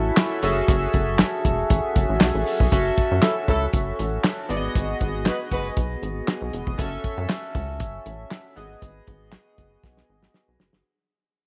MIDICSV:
0, 0, Header, 1, 5, 480
1, 0, Start_track
1, 0, Tempo, 508475
1, 646, Time_signature, 4, 2, 24, 8
1, 10827, End_track
2, 0, Start_track
2, 0, Title_t, "Analog polysynth"
2, 0, Program_c, 0, 90
2, 0, Note_on_c, 0, 61, 81
2, 0, Note_on_c, 0, 64, 74
2, 0, Note_on_c, 0, 66, 74
2, 0, Note_on_c, 0, 69, 76
2, 0, Note_on_c, 0, 76, 85
2, 369, Note_off_c, 0, 61, 0
2, 371, Note_off_c, 0, 64, 0
2, 373, Note_off_c, 0, 66, 0
2, 374, Note_off_c, 0, 69, 0
2, 377, Note_off_c, 0, 76, 0
2, 402, Note_on_c, 0, 61, 79
2, 405, Note_on_c, 0, 66, 67
2, 409, Note_on_c, 0, 68, 68
2, 415, Note_on_c, 0, 69, 71
2, 418, Note_on_c, 0, 76, 86
2, 2526, Note_off_c, 0, 61, 0
2, 2528, Note_off_c, 0, 66, 0
2, 2530, Note_off_c, 0, 68, 0
2, 2532, Note_off_c, 0, 69, 0
2, 2534, Note_off_c, 0, 76, 0
2, 2562, Note_on_c, 0, 61, 80
2, 2567, Note_on_c, 0, 66, 70
2, 2572, Note_on_c, 0, 69, 68
2, 2578, Note_on_c, 0, 76, 90
2, 4210, Note_off_c, 0, 61, 0
2, 4213, Note_off_c, 0, 66, 0
2, 4215, Note_off_c, 0, 69, 0
2, 4218, Note_off_c, 0, 76, 0
2, 4236, Note_on_c, 0, 59, 73
2, 4241, Note_on_c, 0, 66, 69
2, 4247, Note_on_c, 0, 68, 71
2, 4254, Note_on_c, 0, 74, 72
2, 4310, Note_on_c, 0, 75, 89
2, 4311, Note_off_c, 0, 74, 0
2, 6363, Note_off_c, 0, 59, 0
2, 6366, Note_off_c, 0, 66, 0
2, 6369, Note_off_c, 0, 68, 0
2, 6399, Note_on_c, 0, 61, 78
2, 6400, Note_off_c, 0, 75, 0
2, 6404, Note_on_c, 0, 66, 66
2, 6407, Note_on_c, 0, 69, 75
2, 6414, Note_on_c, 0, 76, 87
2, 8048, Note_off_c, 0, 61, 0
2, 8051, Note_off_c, 0, 66, 0
2, 8053, Note_off_c, 0, 69, 0
2, 8056, Note_off_c, 0, 76, 0
2, 8076, Note_on_c, 0, 59, 72
2, 8081, Note_on_c, 0, 66, 70
2, 8087, Note_on_c, 0, 68, 68
2, 8093, Note_on_c, 0, 75, 76
2, 10203, Note_off_c, 0, 59, 0
2, 10206, Note_off_c, 0, 66, 0
2, 10209, Note_off_c, 0, 68, 0
2, 10211, Note_off_c, 0, 75, 0
2, 10827, End_track
3, 0, Start_track
3, 0, Title_t, "Horn section"
3, 0, Program_c, 1, 61
3, 3047, Note_on_c, 1, 69, 89
3, 3049, Note_on_c, 1, 54, 77
3, 3049, Note_on_c, 1, 64, 80
3, 3154, Note_off_c, 1, 69, 0
3, 3155, Note_off_c, 1, 54, 0
3, 3156, Note_off_c, 1, 64, 0
3, 3284, Note_on_c, 1, 69, 105
3, 3286, Note_on_c, 1, 54, 92
3, 3286, Note_on_c, 1, 64, 94
3, 3438, Note_off_c, 1, 69, 0
3, 3439, Note_off_c, 1, 54, 0
3, 3439, Note_off_c, 1, 64, 0
3, 4967, Note_on_c, 1, 56, 87
3, 4968, Note_on_c, 1, 71, 91
3, 4969, Note_on_c, 1, 66, 74
3, 5075, Note_off_c, 1, 56, 0
3, 5075, Note_off_c, 1, 71, 0
3, 5076, Note_off_c, 1, 66, 0
3, 5207, Note_on_c, 1, 66, 91
3, 5208, Note_on_c, 1, 56, 94
3, 5208, Note_on_c, 1, 71, 102
3, 5360, Note_off_c, 1, 56, 0
3, 5360, Note_off_c, 1, 66, 0
3, 5360, Note_off_c, 1, 71, 0
3, 10827, End_track
4, 0, Start_track
4, 0, Title_t, "Analog synth bass"
4, 0, Program_c, 2, 38
4, 0, Note_on_c, 2, 33, 86
4, 105, Note_off_c, 2, 33, 0
4, 407, Note_on_c, 2, 30, 110
4, 587, Note_off_c, 2, 30, 0
4, 645, Note_on_c, 2, 30, 116
4, 826, Note_off_c, 2, 30, 0
4, 887, Note_on_c, 2, 30, 97
4, 1163, Note_off_c, 2, 30, 0
4, 1368, Note_on_c, 2, 28, 92
4, 1548, Note_off_c, 2, 28, 0
4, 1609, Note_on_c, 2, 33, 90
4, 1704, Note_off_c, 2, 33, 0
4, 1849, Note_on_c, 2, 30, 93
4, 1943, Note_off_c, 2, 30, 0
4, 1977, Note_on_c, 2, 33, 91
4, 2061, Note_off_c, 2, 33, 0
4, 2091, Note_on_c, 2, 35, 90
4, 2185, Note_off_c, 2, 35, 0
4, 2216, Note_on_c, 2, 33, 97
4, 2300, Note_off_c, 2, 33, 0
4, 2456, Note_on_c, 2, 35, 98
4, 2540, Note_off_c, 2, 35, 0
4, 2568, Note_on_c, 2, 30, 106
4, 2748, Note_off_c, 2, 30, 0
4, 2941, Note_on_c, 2, 42, 106
4, 3023, Note_off_c, 2, 42, 0
4, 3288, Note_on_c, 2, 37, 95
4, 3468, Note_off_c, 2, 37, 0
4, 3526, Note_on_c, 2, 30, 93
4, 3707, Note_off_c, 2, 30, 0
4, 3771, Note_on_c, 2, 33, 92
4, 3950, Note_off_c, 2, 33, 0
4, 4245, Note_on_c, 2, 32, 100
4, 4426, Note_off_c, 2, 32, 0
4, 4488, Note_on_c, 2, 32, 100
4, 4668, Note_off_c, 2, 32, 0
4, 4728, Note_on_c, 2, 32, 102
4, 5004, Note_off_c, 2, 32, 0
4, 5206, Note_on_c, 2, 30, 90
4, 5387, Note_off_c, 2, 30, 0
4, 5446, Note_on_c, 2, 35, 94
4, 5627, Note_off_c, 2, 35, 0
4, 5688, Note_on_c, 2, 32, 90
4, 5868, Note_off_c, 2, 32, 0
4, 6057, Note_on_c, 2, 35, 92
4, 6141, Note_off_c, 2, 35, 0
4, 6169, Note_on_c, 2, 28, 98
4, 6264, Note_off_c, 2, 28, 0
4, 6295, Note_on_c, 2, 29, 96
4, 6379, Note_off_c, 2, 29, 0
4, 6408, Note_on_c, 2, 30, 108
4, 6588, Note_off_c, 2, 30, 0
4, 6775, Note_on_c, 2, 42, 114
4, 6859, Note_off_c, 2, 42, 0
4, 7126, Note_on_c, 2, 37, 89
4, 7365, Note_on_c, 2, 30, 103
4, 7380, Note_off_c, 2, 37, 0
4, 7547, Note_off_c, 2, 30, 0
4, 7609, Note_on_c, 2, 33, 90
4, 7789, Note_off_c, 2, 33, 0
4, 8089, Note_on_c, 2, 32, 99
4, 8269, Note_off_c, 2, 32, 0
4, 8326, Note_on_c, 2, 32, 108
4, 8507, Note_off_c, 2, 32, 0
4, 8567, Note_on_c, 2, 32, 97
4, 8843, Note_off_c, 2, 32, 0
4, 9044, Note_on_c, 2, 30, 84
4, 9225, Note_off_c, 2, 30, 0
4, 9284, Note_on_c, 2, 35, 93
4, 9465, Note_off_c, 2, 35, 0
4, 9529, Note_on_c, 2, 32, 84
4, 9709, Note_off_c, 2, 32, 0
4, 9896, Note_on_c, 2, 35, 97
4, 9980, Note_off_c, 2, 35, 0
4, 10010, Note_on_c, 2, 30, 92
4, 10104, Note_off_c, 2, 30, 0
4, 10135, Note_on_c, 2, 31, 91
4, 10219, Note_off_c, 2, 31, 0
4, 10827, End_track
5, 0, Start_track
5, 0, Title_t, "Drums"
5, 160, Note_on_c, 9, 38, 124
5, 160, Note_on_c, 9, 39, 100
5, 165, Note_on_c, 9, 42, 87
5, 254, Note_off_c, 9, 39, 0
5, 255, Note_off_c, 9, 38, 0
5, 259, Note_off_c, 9, 42, 0
5, 402, Note_on_c, 9, 42, 79
5, 496, Note_off_c, 9, 42, 0
5, 645, Note_on_c, 9, 42, 113
5, 646, Note_on_c, 9, 36, 119
5, 739, Note_off_c, 9, 42, 0
5, 740, Note_off_c, 9, 36, 0
5, 881, Note_on_c, 9, 42, 65
5, 887, Note_on_c, 9, 36, 92
5, 975, Note_off_c, 9, 42, 0
5, 982, Note_off_c, 9, 36, 0
5, 1121, Note_on_c, 9, 42, 85
5, 1122, Note_on_c, 9, 39, 86
5, 1123, Note_on_c, 9, 38, 122
5, 1215, Note_off_c, 9, 42, 0
5, 1216, Note_off_c, 9, 39, 0
5, 1217, Note_off_c, 9, 38, 0
5, 1368, Note_on_c, 9, 36, 91
5, 1369, Note_on_c, 9, 42, 77
5, 1462, Note_off_c, 9, 36, 0
5, 1463, Note_off_c, 9, 42, 0
5, 1605, Note_on_c, 9, 42, 95
5, 1608, Note_on_c, 9, 36, 122
5, 1700, Note_off_c, 9, 42, 0
5, 1703, Note_off_c, 9, 36, 0
5, 1848, Note_on_c, 9, 42, 76
5, 1850, Note_on_c, 9, 36, 111
5, 1942, Note_off_c, 9, 42, 0
5, 1944, Note_off_c, 9, 36, 0
5, 2082, Note_on_c, 9, 39, 93
5, 2083, Note_on_c, 9, 38, 127
5, 2087, Note_on_c, 9, 42, 83
5, 2176, Note_off_c, 9, 39, 0
5, 2177, Note_off_c, 9, 38, 0
5, 2181, Note_off_c, 9, 42, 0
5, 2325, Note_on_c, 9, 46, 74
5, 2420, Note_off_c, 9, 46, 0
5, 2456, Note_on_c, 9, 36, 93
5, 2551, Note_off_c, 9, 36, 0
5, 2569, Note_on_c, 9, 36, 118
5, 2569, Note_on_c, 9, 42, 102
5, 2664, Note_off_c, 9, 36, 0
5, 2664, Note_off_c, 9, 42, 0
5, 2807, Note_on_c, 9, 42, 66
5, 2810, Note_on_c, 9, 36, 99
5, 2902, Note_off_c, 9, 42, 0
5, 2904, Note_off_c, 9, 36, 0
5, 3042, Note_on_c, 9, 42, 83
5, 3043, Note_on_c, 9, 39, 89
5, 3044, Note_on_c, 9, 38, 108
5, 3136, Note_off_c, 9, 42, 0
5, 3138, Note_off_c, 9, 39, 0
5, 3139, Note_off_c, 9, 38, 0
5, 3288, Note_on_c, 9, 36, 92
5, 3290, Note_on_c, 9, 42, 71
5, 3382, Note_off_c, 9, 36, 0
5, 3384, Note_off_c, 9, 42, 0
5, 3521, Note_on_c, 9, 42, 99
5, 3526, Note_on_c, 9, 36, 114
5, 3616, Note_off_c, 9, 42, 0
5, 3620, Note_off_c, 9, 36, 0
5, 3768, Note_on_c, 9, 42, 72
5, 3862, Note_off_c, 9, 42, 0
5, 4004, Note_on_c, 9, 39, 93
5, 4005, Note_on_c, 9, 38, 113
5, 4010, Note_on_c, 9, 42, 85
5, 4099, Note_off_c, 9, 39, 0
5, 4100, Note_off_c, 9, 38, 0
5, 4104, Note_off_c, 9, 42, 0
5, 4247, Note_on_c, 9, 42, 80
5, 4341, Note_off_c, 9, 42, 0
5, 4489, Note_on_c, 9, 36, 124
5, 4491, Note_on_c, 9, 42, 100
5, 4583, Note_off_c, 9, 36, 0
5, 4585, Note_off_c, 9, 42, 0
5, 4727, Note_on_c, 9, 42, 62
5, 4729, Note_on_c, 9, 36, 89
5, 4821, Note_off_c, 9, 42, 0
5, 4824, Note_off_c, 9, 36, 0
5, 4962, Note_on_c, 9, 42, 86
5, 4964, Note_on_c, 9, 39, 88
5, 4965, Note_on_c, 9, 38, 108
5, 5057, Note_off_c, 9, 42, 0
5, 5058, Note_off_c, 9, 39, 0
5, 5059, Note_off_c, 9, 38, 0
5, 5207, Note_on_c, 9, 36, 85
5, 5208, Note_on_c, 9, 42, 70
5, 5301, Note_off_c, 9, 36, 0
5, 5302, Note_off_c, 9, 42, 0
5, 5444, Note_on_c, 9, 42, 97
5, 5447, Note_on_c, 9, 36, 113
5, 5539, Note_off_c, 9, 42, 0
5, 5541, Note_off_c, 9, 36, 0
5, 5690, Note_on_c, 9, 42, 69
5, 5785, Note_off_c, 9, 42, 0
5, 5928, Note_on_c, 9, 39, 90
5, 5929, Note_on_c, 9, 38, 120
5, 5934, Note_on_c, 9, 42, 83
5, 6023, Note_off_c, 9, 39, 0
5, 6024, Note_off_c, 9, 38, 0
5, 6028, Note_off_c, 9, 42, 0
5, 6168, Note_on_c, 9, 42, 78
5, 6263, Note_off_c, 9, 42, 0
5, 6296, Note_on_c, 9, 36, 95
5, 6391, Note_off_c, 9, 36, 0
5, 6408, Note_on_c, 9, 36, 116
5, 6410, Note_on_c, 9, 42, 103
5, 6503, Note_off_c, 9, 36, 0
5, 6505, Note_off_c, 9, 42, 0
5, 6645, Note_on_c, 9, 42, 62
5, 6648, Note_on_c, 9, 36, 93
5, 6739, Note_off_c, 9, 42, 0
5, 6743, Note_off_c, 9, 36, 0
5, 6883, Note_on_c, 9, 42, 77
5, 6884, Note_on_c, 9, 39, 88
5, 6886, Note_on_c, 9, 38, 113
5, 6978, Note_off_c, 9, 42, 0
5, 6979, Note_off_c, 9, 39, 0
5, 6980, Note_off_c, 9, 38, 0
5, 7127, Note_on_c, 9, 36, 89
5, 7128, Note_on_c, 9, 42, 68
5, 7221, Note_off_c, 9, 36, 0
5, 7223, Note_off_c, 9, 42, 0
5, 7362, Note_on_c, 9, 42, 91
5, 7366, Note_on_c, 9, 36, 123
5, 7456, Note_off_c, 9, 42, 0
5, 7460, Note_off_c, 9, 36, 0
5, 7608, Note_on_c, 9, 42, 67
5, 7702, Note_off_c, 9, 42, 0
5, 7846, Note_on_c, 9, 39, 91
5, 7847, Note_on_c, 9, 38, 119
5, 7851, Note_on_c, 9, 42, 78
5, 7941, Note_off_c, 9, 39, 0
5, 7942, Note_off_c, 9, 38, 0
5, 7946, Note_off_c, 9, 42, 0
5, 8087, Note_on_c, 9, 42, 74
5, 8181, Note_off_c, 9, 42, 0
5, 8327, Note_on_c, 9, 36, 115
5, 8327, Note_on_c, 9, 42, 102
5, 8421, Note_off_c, 9, 36, 0
5, 8422, Note_off_c, 9, 42, 0
5, 8564, Note_on_c, 9, 42, 62
5, 8568, Note_on_c, 9, 36, 89
5, 8658, Note_off_c, 9, 42, 0
5, 8662, Note_off_c, 9, 36, 0
5, 8799, Note_on_c, 9, 42, 84
5, 8800, Note_on_c, 9, 39, 88
5, 8801, Note_on_c, 9, 38, 104
5, 8894, Note_off_c, 9, 42, 0
5, 8895, Note_off_c, 9, 39, 0
5, 8896, Note_off_c, 9, 38, 0
5, 9045, Note_on_c, 9, 36, 81
5, 9046, Note_on_c, 9, 42, 70
5, 9139, Note_off_c, 9, 36, 0
5, 9140, Note_off_c, 9, 42, 0
5, 9285, Note_on_c, 9, 36, 105
5, 9285, Note_on_c, 9, 38, 58
5, 9379, Note_off_c, 9, 36, 0
5, 9380, Note_off_c, 9, 38, 0
5, 9415, Note_on_c, 9, 38, 55
5, 9509, Note_off_c, 9, 38, 0
5, 9653, Note_on_c, 9, 38, 70
5, 9747, Note_off_c, 9, 38, 0
5, 9764, Note_on_c, 9, 38, 82
5, 9858, Note_off_c, 9, 38, 0
5, 10006, Note_on_c, 9, 38, 96
5, 10100, Note_off_c, 9, 38, 0
5, 10130, Note_on_c, 9, 38, 90
5, 10224, Note_off_c, 9, 38, 0
5, 10827, End_track
0, 0, End_of_file